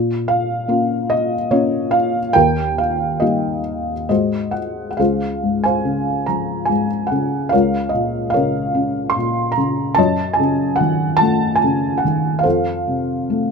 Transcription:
0.00 2.31 A#2 medium
0.28 1.12 F5 medium
0.68 1.35 A#3 medium
0.68 1.35 C#4 soft
0.68 1.35 F4 medium
1.10 1.52 D#5 medium
1.51 2.19 A#3 soft
1.51 2.19 C#4 soft
1.51 2.19 F4 medium
1.51 1.94 C#5 medium
1.91 2.32 F5 medium
2.33 4.06 D#2 medium
2.33 3.60 A#4 medium
2.33 2.79 G5 loud
2.78 3.22 F5 medium
3.20 3.92 G3 soft
3.20 3.92 A#3 soft
3.20 3.92 D#4 soft
3.20 4.51 G4 soft
3.20 4.08 D#5 medium
4.09 4.97 G#2 medium
4.09 4.96 F#4 soft
4.09 4.96 C5 soft
4.09 4.56 D#5 medium
4.51 4.88 F#5 medium
4.91 4.99 F#5 soft
4.97 7.49 C#2 medium
4.97 6.24 G#4 medium
4.97 5.64 C5 soft
4.97 5.64 F5 medium
5.43 6.68 G#2 soft
5.64 6.87 C5 medium
5.64 6.87 F5 soft
5.64 6.24 G#5 medium
5.85 7.10 C#3 soft
6.26 7.49 F3 soft
6.26 6.70 A#5 medium
6.65 7.06 G#5 medium
6.69 7.50 G#2 soft
7.07 7.52 F#5 medium
7.11 7.52 C#3 soft
7.49 8.33 A#4 medium
7.49 8.32 C#5 medium
7.49 7.90 F5 medium
7.54 9.94 C#2 medium
7.89 8.33 D#5 medium
7.94 9.15 A#2 soft
8.30 9.52 A#4 medium
8.30 9.52 C#5 medium
8.30 9.16 F5 medium
8.36 9.56 C#3 soft
8.75 9.94 C#4 medium
9.10 9.55 C6 medium
9.16 9.96 A#2 medium
9.52 9.97 A#5 medium
9.57 9.97 C#3 soft
9.95 12.41 F#2 medium
9.95 11.18 D#5 medium
9.95 10.39 A5 loud
9.99 11.18 C#5 medium
10.33 10.79 G#5 medium
10.40 11.62 C#3 soft
10.76 11.20 F#5 medium
10.80 12.03 D#3 medium
11.17 11.57 A5 loud
11.21 12.42 A3 soft
11.56 12.02 G#5 medium
11.64 12.44 C#3 medium
11.98 12.44 F#5 medium
12.05 12.45 D#3 soft
12.39 13.51 F5 medium
12.43 13.51 F2 medium
12.43 13.51 A4 medium
12.43 13.51 C5 medium
12.87 13.51 C3 soft
13.30 13.51 A3 soft

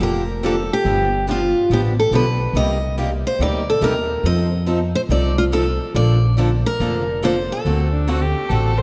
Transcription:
0.00 0.68 F1 medium
0.00 0.22 D3 medium
0.00 0.22 F3 medium
0.00 0.22 A#3 medium
0.00 0.22 D4 medium
0.00 0.22 G4 medium
0.00 0.45 A#4 medium
0.43 0.54 D3 medium
0.43 0.54 F3 medium
0.43 0.54 A#3 medium
0.43 0.55 D4 medium
0.43 0.55 G4 medium
0.43 0.72 A4 medium
0.73 1.25 G4 medium
0.85 1.53 G1 medium
0.85 1.07 D3 medium
0.85 1.07 F3 medium
0.85 1.07 B3 medium
0.85 1.07 D4 medium
0.85 1.08 G4 medium
1.28 1.39 D3 medium
1.28 1.39 F3 medium
1.28 1.39 B3 medium
1.28 1.40 D4 medium
1.28 1.73 F4 medium
1.28 1.40 G4 medium
1.70 2.06 A1 medium
1.70 1.92 D3 medium
1.70 1.92 F3 medium
1.70 1.92 B3 medium
1.70 1.92 D4 medium
1.70 1.93 G4 medium
1.70 1.80 G4 medium
2.00 2.14 A4 medium
2.11 2.48 B1 medium
2.11 2.24 D3 medium
2.11 2.24 F3 medium
2.11 2.24 B3 medium
2.11 2.25 D4 medium
2.11 2.25 G4 medium
2.15 2.56 B4 medium
2.53 3.22 C2 medium
2.53 2.76 C3 medium
2.53 2.77 G3 medium
2.53 2.77 A#3 medium
2.53 2.77 D#4 medium
2.53 2.77 G4 medium
2.53 2.95 D#5 medium
2.98 3.09 C3 medium
2.98 3.09 G3 medium
2.98 3.09 A#3 medium
2.98 3.09 D#4 medium
2.98 3.09 G4 medium
3.27 3.40 C5 medium
3.39 3.75 D2 medium
3.39 3.62 C3 medium
3.39 3.62 G3 medium
3.39 3.62 A#3 medium
3.39 3.62 D#4 medium
3.39 3.62 G4 medium
3.39 3.69 D5 medium
3.70 3.83 A4 medium
3.81 4.18 D#2 medium
3.81 3.93 C3 medium
3.81 3.93 G3 medium
3.81 3.94 A#3 medium
3.81 3.94 D#4 medium
3.81 3.94 G4 medium
3.81 4.27 A#4 medium
4.23 4.92 F2 medium
4.23 4.47 F3 medium
4.23 4.47 C4 medium
4.23 4.47 D#4 medium
4.23 4.47 A4 medium
4.23 4.65 D#5 medium
4.66 4.78 F3 medium
4.66 4.78 C4 medium
4.66 4.78 D#4 medium
4.66 4.79 A4 medium
4.95 5.00 C5 medium
5.09 5.77 C2 medium
5.09 5.32 F3 medium
5.09 5.32 C4 medium
5.09 5.32 D#4 medium
5.09 5.32 A4 medium
5.09 5.36 D5 medium
5.38 5.43 F4 medium
5.52 5.64 F3 medium
5.52 5.64 C4 medium
5.52 5.64 D#4 medium
5.52 5.92 A4 medium
5.52 5.64 A4 medium
5.94 6.63 A#1 medium
5.94 6.16 D3 medium
5.94 6.16 F3 medium
5.94 6.17 A#3 medium
5.94 6.17 D4 medium
5.94 6.17 A4 medium
5.94 6.35 D5 medium
6.38 6.49 D3 medium
6.38 6.49 F3 medium
6.38 6.49 A#3 medium
6.38 6.49 D4 medium
6.38 6.49 A4 medium
6.66 7.25 A#4 medium
6.80 7.48 F1 medium
6.80 7.02 D3 medium
6.80 7.02 F3 medium
6.80 7.02 A#3 medium
6.80 7.02 D4 medium
6.80 7.02 A4 medium
7.22 7.34 D3 medium
7.22 7.34 F3 medium
7.22 7.34 A#3 loud
7.22 7.34 D4 medium
7.22 7.34 A4 loud
7.22 7.51 C5 medium
7.52 8.82 A4 medium
7.65 8.33 D2 medium
7.65 7.87 D3 medium
7.65 7.87 A3 medium
7.65 7.87 C4 medium
7.65 7.87 F#4 medium
7.65 7.87 A4 medium
7.92 8.10 D4 medium
8.07 8.19 D3 medium
8.07 8.19 A3 medium
8.07 8.19 C4 medium
8.07 8.19 F#4 medium
8.07 8.23 F#4 medium
8.07 8.19 A4 medium
8.21 8.51 G4 medium
8.49 8.82 A1 medium
8.49 8.72 D3 medium
8.49 8.72 A3 medium
8.49 8.72 C4 medium
8.49 8.72 F#4 medium
8.49 8.79 A4 medium
8.49 8.72 A4 medium
8.78 8.82 C5 medium

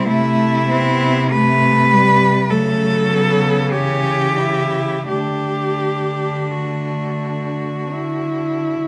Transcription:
0.00 0.10 G3 loud
0.06 2.52 C3 loud
0.06 0.68 A3 loud
0.06 0.71 A3 medium
0.06 1.34 E4 loud
0.70 1.32 B3 medium
0.70 1.31 C4 loud
1.32 1.94 A3 medium
1.32 1.94 A3 loud
1.32 2.52 B4 loud
1.92 2.51 G3 medium
1.92 2.52 G3 loud
2.50 5.10 C#3 loud
2.50 3.75 F#3 loud
2.50 3.08 A3 medium
2.50 3.74 A4 loud
3.09 3.75 B3 medium
3.73 5.09 E3 medium
3.73 4.40 C#4 medium
3.73 5.08 G4 loud
4.39 5.08 E4 medium
5.08 8.88 D3 medium
5.08 6.35 A3 medium
5.08 8.88 D4 medium
5.08 6.52 G4 loud
6.51 7.93 A3 medium
6.51 8.88 F#4 medium
7.91 8.88 E4 medium

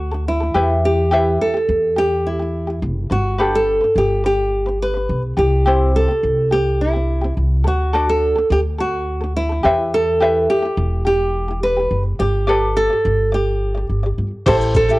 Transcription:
0.00 0.51 D2 medium
0.00 0.28 F#4 medium
0.11 0.36 D4 soft
0.11 0.35 A4 soft
0.28 0.67 E4 medium
0.40 0.54 D4 soft
0.40 0.54 A4 soft
0.54 1.36 E2 medium
0.54 1.11 E4 medium
0.54 1.11 G4 medium
0.54 1.12 B4 medium
0.54 1.12 E5 medium
0.85 1.37 G4 medium
1.11 1.55 E4 medium
1.11 1.53 G4 medium
1.11 1.55 B4 medium
1.11 1.55 E5 medium
1.41 1.98 A4 medium
1.54 1.78 E4 medium
1.54 1.77 G4 soft
1.69 2.84 E2 medium
1.96 2.21 E4 medium
1.96 2.19 G4 soft
1.96 2.27 G4 medium
2.27 2.79 E4 medium
2.39 2.64 E4 soft
2.39 2.62 G4 soft
2.67 2.92 E4 soft
2.67 2.90 G4 soft
2.82 3.06 F#1 medium
3.10 3.78 G1 medium
3.10 3.34 D4 medium
3.10 3.51 F#4 medium
3.10 3.33 B4 soft
3.38 3.82 D4 medium
3.38 3.82 G4 medium
3.38 3.82 A4 medium
3.38 3.80 B4 medium
3.55 3.94 A4 medium
3.81 4.06 D4 soft
3.81 4.04 B4 soft
3.95 5.05 G1 medium
3.95 4.23 G4 medium
4.24 4.48 D4 medium
4.24 4.82 G4 medium
4.24 4.47 B4 soft
4.66 4.90 D4 soft
4.66 4.89 B4 soft
4.82 5.21 B4 medium
4.94 5.19 D4 soft
4.94 5.17 B4 soft
5.09 5.33 B1 medium
5.37 6.05 C2 medium
5.37 5.61 C4 medium
5.37 5.60 G4 medium
5.37 5.91 G4 medium
5.66 6.09 C4 medium
5.66 6.09 E4 medium
5.66 6.07 G4 medium
5.66 6.10 C5 medium
5.96 6.48 A4 medium
6.08 6.33 C4 soft
6.08 6.31 G4 soft
6.23 7.33 C2 medium
6.51 6.75 C4 medium
6.51 6.74 G4 soft
6.51 6.81 G4 medium
6.81 7.33 E4 medium
6.93 7.18 C4 soft
6.93 7.16 G4 soft
7.21 7.46 C4 soft
7.21 7.44 G4 soft
7.37 7.65 C2 medium
7.64 8.32 D2 medium
7.64 7.89 D4 medium
7.64 8.06 F#4 medium
7.64 7.87 A4 medium
7.93 8.36 D4 medium
7.93 8.37 F#4 medium
7.93 8.34 A4 medium
7.93 8.37 D5 medium
8.09 8.52 A4 medium
8.35 8.60 D4 soft
8.35 8.58 A4 soft
8.50 9.60 D2 medium
8.50 8.59 G4 medium
8.78 9.02 D4 medium
8.78 9.36 F#4 medium
8.78 9.01 A4 medium
9.21 9.45 D4 soft
9.21 9.44 A4 soft
9.36 9.76 E4 medium
9.49 9.63 D4 soft
9.49 9.63 A4 soft
9.63 10.46 E2 medium
9.63 10.20 E4 medium
9.63 10.20 G4 medium
9.63 10.22 B4 medium
9.63 10.21 E5 medium
9.94 10.50 A4 medium
10.20 10.63 E4 medium
10.20 10.61 G4 medium
10.20 10.64 B4 medium
10.20 10.64 E5 medium
10.50 11.02 G4 medium
10.62 10.87 E4 soft
10.62 10.85 G4 soft
10.77 11.87 E1 medium
11.05 11.29 E4 medium
11.05 11.28 G4 medium
11.05 11.63 G4 medium
11.48 11.72 E4 soft
11.48 11.71 G4 soft
11.63 12.02 B4 medium
11.77 12.01 E4 soft
11.77 11.99 G4 soft
11.91 12.14 F#1 medium
12.19 12.87 G1 medium
12.19 12.72 G4 medium
12.19 12.43 G4 medium
12.19 12.42 D5 medium
12.47 12.90 G4 medium
12.47 12.91 A4 medium
12.47 12.91 B4 medium
12.47 12.89 D5 medium
12.77 13.34 A4 medium
12.90 13.14 G4 soft
12.90 13.13 D5 soft
13.05 13.86 G1 medium
13.32 13.86 G4 medium
13.32 13.57 G4 medium
13.32 13.55 D5 medium
13.75 13.99 G4 soft
13.75 13.98 D5 soft
13.90 14.13 G1 medium
14.03 14.28 G4 soft
14.03 14.26 D5 soft
14.18 14.30 G1 medium
14.46 14.99 A1 loud
14.46 14.89 E4 medium
14.46 14.89 G4 medium
14.46 14.88 A4 medium
14.46 14.89 C5 medium
14.46 14.55 C5 medium
14.46 kick medium
14.46 crash medium
14.46 shaker medium
14.61 shaker soft
14.74 14.99 A4 medium
14.74 kick medium
14.74 shaker medium
14.89 14.99 E4 soft
14.89 14.99 G4 soft
14.89 14.99 A4 medium
14.89 shaker soft

